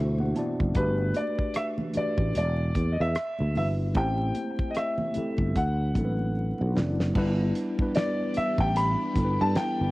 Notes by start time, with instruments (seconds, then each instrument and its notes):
Already playing: fretless electric bass D2, tine electric piano B2 D4 E4 F#4 C5 E5
0.18 tine electric piano F#5, muted conga, high conga
0.34 tine electric piano B3 D4 E4 F#4 A5, closed hi-hat, high conga, low conga
0.38 tine electric piano D5
0.60 fretless electric bass F#1, kick
0.74 fretless electric bass G1, tine electric piano A3 D4 F#4 G4, grand piano B4, kick, closed hi-hat
0.78 tine electric piano B4
0.98 muted conga
1.14 grand piano D5, closed hi-hat, high conga
1.39 kick
1.54 grand piano E5, cross-stick, closed hi-hat, muted conga
1.78 muted conga, high conga, low conga
1.94 tine electric piano A3 D4 F#4 G4, grand piano D5, muted fretless electric bass stroke, closed hi-hat, low conga
1.98 tine electric piano B4
2.18 fretless electric bass A1, kick
2.35 fretless electric bass E1, grand piano D5, closed hi-hat
2.58 muted conga
2.74 fretless electric bass E2, kick, closed hi-hat, high conga
2.92 grand piano D#5
3.00 fretless electric bass E2, grand piano E5
3.15 cross-stick, closed hi-hat
3.39 fretless electric bass D2, muted conga, high conga
3.54 fretless electric bass G1, tine electric piano G3 D4 E4 F#4, grand piano E5, open hi-hat, high conga, low conga
3.58 tine electric piano B4
3.94 fretless electric bass A1, tine electric piano A3 C4 E4 G4, grand piano G5, kick, closed hi-hat
3.98 tine electric piano C5
4.34 closed hi-hat, high conga
4.59 kick
4.70 grand piano D#5
4.75 grand piano E5, cross-stick, closed hi-hat
4.98 muted conga, high conga, low conga
5.14 tine electric piano A3 C4 E4 G4, muted fretless electric bass stroke, closed hi-hat, low conga
5.18 tine electric piano A4
5.38 fretless electric bass G1, kick
5.56 fretless electric bass D2, grand piano F#5, kick, closed hi-hat
5.94 fretless electric bass A1, tine electric piano F#3 C4 D4 E4, kick, closed hi-hat, high conga
5.99 tine electric piano A4
6.05 tine electric piano B4
6.17 high conga
6.35 muted conga
6.58 fretless electric bass B1, high conga
6.74 fretless electric bass F#1, tine electric piano F#3 C4 D4 E4, snare, high conga, low conga
6.78 tine electric piano D5
7.00 snare
7.14 fretless electric bass G1, string machine E3 B3 D4 G4, tine electric piano G3 B3 D4 E4, kick, crash
7.18 tine electric piano B4
7.55 closed hi-hat
7.78 tine electric piano G3 B3 D4 E4, kick
7.82 tine electric piano B4
7.95 grand piano D5, snare, closed hi-hat
8.34 grand piano E5, muted fretless electric bass stroke, closed hi-hat
8.58 fretless electric bass A1, grand piano G5, kick
8.76 grand piano B5, closed hi-hat
9.14 fretless electric bass G1, tine electric piano G3 B3 D4 E4, kick, closed hi-hat
9.18 tine electric piano A4
9.24 tine electric piano B4
9.41 fretless electric bass G2, grand piano A5
9.56 grand piano G5, snare, closed hi-hat
9.81 fretless electric bass G1